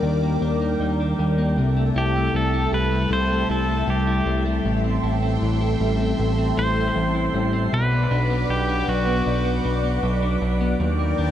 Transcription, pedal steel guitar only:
1.98 2.36 G4 medium
2.36 2.74 A4 medium
2.74 3.12 B4 medium
3.13 3.51 C5 loud
3.51 3.90 A4 medium
3.90 4.43 G4 medium
6.59 7.73 C5 medium
7.74 8.52 B4 medium
8.50 8.90 G4 medium
8.89 10.38 F#4 medium

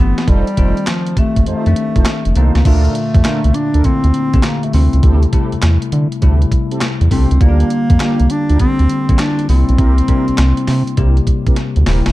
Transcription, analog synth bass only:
0.00 0.14 G1 medium
0.28 0.43 F1 loud
0.58 0.73 F1 loud
1.17 1.25 G1 soft
1.37 1.44 G1 medium
1.47 1.55 F2 medium
1.67 1.74 F2 loud
1.96 2.04 F1 loud
2.26 2.34 F1 medium
2.36 2.51 C2 medium
2.55 2.63 C#2 medium
2.66 2.89 D2 loud
3.15 3.23 F2 loud
3.45 3.52 C2 loud
3.75 3.82 D2 medium
3.85 3.93 D2 soft
4.04 4.12 D2 loud
4.34 4.42 A#1 loud
4.74 4.89 D2 loud
4.94 5.01 C#2 medium
5.03 5.27 D2 loud
5.53 5.57 E2 medium
5.63 5.78 E2 loud
5.93 6.08 D3 loud
6.23 6.46 D2 loud
7.01 7.09 E2 medium
7.11 7.27 C2 medium
7.31 7.39 C#2 medium
7.41 7.64 D2 loud
7.90 7.98 F2 medium
8.20 8.28 C2 medium
8.50 8.58 D2 medium
8.60 8.68 D2 medium
8.80 8.87 D2 medium
9.09 9.17 A#1 medium
9.49 9.64 C2 loud
9.69 9.77 B1 medium
9.79 10.02 C2 loud
10.28 10.32 C2 medium
10.38 10.54 C2 loud
10.68 10.83 C3 loud
10.98 11.21 C2 medium
11.77 11.84 D2 loud
11.87 12.02 D#1 loud
12.07 12.12 E1 medium

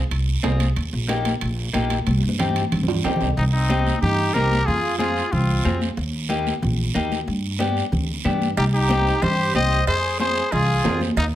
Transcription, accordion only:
3.37 3.45 C4 medium
3.54 3.99 C4 medium
4.01 4.32 D#4 medium
4.34 4.67 G4 medium
4.66 4.97 F4 medium
4.99 5.29 F4 medium
5.32 5.81 C4 medium
8.57 8.65 D#4 medium
8.74 9.19 D#4 medium
9.23 9.55 G4 medium
9.55 9.85 C5 medium
9.88 10.18 G#4 medium
10.20 10.50 G#4 medium
10.53 11.01 F4 medium
11.17 11.25 A#3 medium

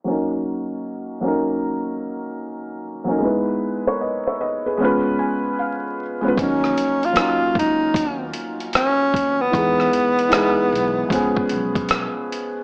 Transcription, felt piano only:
0.04 1.12 F#3 medium
0.04 1.13 A#3 medium
0.04 1.14 C#4 medium
0.09 1.15 D#4 medium
0.09 1.16 A#4 medium
1.21 2.65 F#3 medium
1.21 2.66 A#3 medium
1.21 2.66 C#4 medium
1.26 2.67 D#4 medium
1.26 2.68 A#4 medium
3.04 3.18 F#3 medium
3.04 3.19 A#3 medium
3.04 3.20 C#4 medium
3.10 3.20 D#4 medium
3.10 3.22 A#4 medium
3.18 4.27 G#3 medium
3.18 4.28 B3 medium
3.18 4.29 D#4 medium
3.23 4.30 E4 medium
3.23 3.63 B4 medium
3.87 4.01 A#4 medium
3.87 4.00 C#5 medium
4.01 4.26 B4 medium
4.01 4.25 D#5 medium
4.27 4.40 C#5 soft
4.27 4.40 E5 medium
4.41 4.65 B4 soft
4.41 4.65 D#5 medium
4.66 5.04 G#4 medium
4.66 4.83 B4 medium
4.77 5.99 G#3 medium
4.77 6.00 B3 medium
4.77 6.00 C#4 medium
4.83 6.01 F4 medium
4.83 6.02 B4 loud
5.19 5.56 G#5 medium
5.59 6.34 F5 medium
6.21 6.34 G#3 medium
6.21 6.35 B3 medium
6.21 6.36 C#4 medium
6.26 6.37 F4 medium
6.26 6.38 B4 medium
6.35 6.45 F3 medium
6.35 7.09 A#3 medium
6.35 7.09 C#4 medium
6.40 7.11 F#3 medium
6.40 7.10 D#4 medium
6.40 7.11 A#4 medium
7.13 8.57 F#3 medium
7.13 8.58 A#3 medium
7.13 8.59 C#4 medium
7.18 8.59 D#4 medium
7.18 8.60 F4 medium
9.51 10.24 E3 medium
9.51 10.25 G#3 medium
9.51 10.25 B3 medium
9.56 10.26 D#4 medium
9.56 10.27 G#4 medium
10.29 11.10 E3 medium
10.29 11.09 G#3 medium
10.29 11.10 B3 medium
10.34 11.12 D#4 medium
10.34 11.13 G#4 medium
11.09 12.52 F3 medium
11.09 12.53 G#3 medium
11.09 12.54 B3 medium
11.14 12.55 C#4 medium
11.14 12.56 G#4 loud

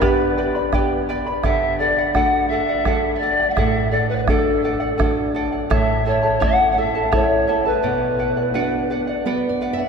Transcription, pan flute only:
0.00 1.02 B4 medium
1.43 1.80 E5 loud
1.78 2.13 D5 medium
2.13 2.49 F#5 medium
2.48 3.13 E5 loud
3.15 3.51 D5 medium
3.15 3.19 E5 medium
3.50 3.92 E5 medium
3.50 3.55 F#5 medium
3.90 4.08 D5 medium
4.09 4.15 B4 medium
4.15 4.21 B4 medium
4.15 4.19 D5 medium
4.22 4.30 B4 medium
4.28 5.35 A4 medium
5.72 6.04 E5 medium
6.07 6.44 C#5 medium
6.43 6.71 F#5 loud
6.71 6.80 F#5 medium
6.79 7.13 E5 medium
7.14 7.68 C#5 medium
7.66 9.26 B4 medium

